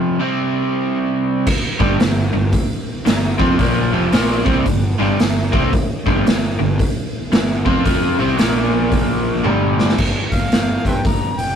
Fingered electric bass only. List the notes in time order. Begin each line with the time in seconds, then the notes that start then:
1.80 G1
2.01 G1
2.34 G1
3.08 G1
3.40 F2
3.59 A#1
3.94 F1
4.14 A#1
4.46 C2
4.66 G1
5.00 G1
5.21 G1
5.53 C2
6.06 G1
6.27 G1
6.60 G1
7.33 G1
7.66 F2
7.85 F2
8.20 C2
8.39 A#1
9.45 G1
9.98 G1
10.32 G1
10.52 G1
10.85 G2
11.05 G1
11.38 F1